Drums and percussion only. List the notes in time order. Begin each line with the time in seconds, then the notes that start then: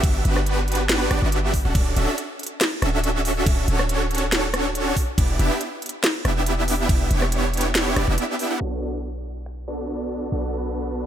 0.04 kick, closed hi-hat, crash
0.25 closed hi-hat
0.36 cross-stick
0.46 closed hi-hat
0.68 closed hi-hat
0.72 closed hi-hat
0.75 closed hi-hat
0.89 snare, closed hi-hat, crash
1.11 cross-stick, closed hi-hat
1.32 closed hi-hat
1.54 kick, open hi-hat
1.75 kick, closed hi-hat, crash
1.96 closed hi-hat
2.18 closed hi-hat
2.39 closed hi-hat
2.43 closed hi-hat
2.47 closed hi-hat
2.61 snare, closed hi-hat, crash
2.82 cross-stick, closed hi-hat
3.04 closed hi-hat
3.25 open hi-hat
3.46 kick, closed hi-hat, crash
3.68 closed hi-hat
3.79 cross-stick
3.89 closed hi-hat
4.11 closed hi-hat
4.15 closed hi-hat
4.18 closed hi-hat
4.32 snare, closed hi-hat, crash
4.54 cross-stick, closed hi-hat
4.75 closed hi-hat
4.96 kick, open hi-hat
5.18 kick, closed hi-hat, crash
5.39 closed hi-hat
5.61 closed hi-hat
5.82 closed hi-hat
5.86 closed hi-hat
5.89 closed hi-hat
6.04 snare, closed hi-hat, crash
6.25 cross-stick, closed hi-hat
6.46 closed hi-hat
6.68 open hi-hat
6.89 kick, closed hi-hat, crash
7.11 closed hi-hat
7.22 cross-stick
7.32 closed hi-hat
7.54 closed hi-hat
7.57 closed hi-hat
7.61 closed hi-hat
7.75 snare, closed hi-hat, crash
7.96 cross-stick, closed hi-hat
8.18 closed hi-hat
8.39 open hi-hat
9.46 finger snap
10.11 open hi-hat